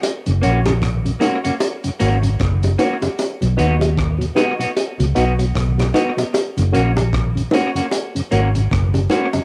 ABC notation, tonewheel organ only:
X:1
M:4/4
L:1/16
Q:"Swing 16ths" 1/4=76
K:F#
V:1 name="Tonewheel organ"
z2 [A,CF]2 z2 [A,CF]2 z2 [A,CF]2 z2 [A,CF]2 | z2 [B,DF]2 z2 [B,DF]2 z2 [B,DF]2 z2 [B,DF]2 | z2 [A,CF]2 z2 [A,CF]2 z2 [A,CF]2 z2 [A,CF]2 |]
V:2 name="Tonewheel organ" clef=bass
z [F,,C,] z [F,,C,] z [F,,C,] z [F,,C,] z [F,,C,] z [F,,C,] z [F,,C,] z [F,,C,] | z [B,,F,] z [B,,F,] z [B,,F,] z [B,,F,] z [B,,F,] z [B,,F,] z [B,,F,] z [B,,F,] | z [F,,C,] z [F,,C,] z [F,,C,] z [F,,C,] z [F,,C,] z [F,,C,] z [F,,C,] z [F,,C,] |]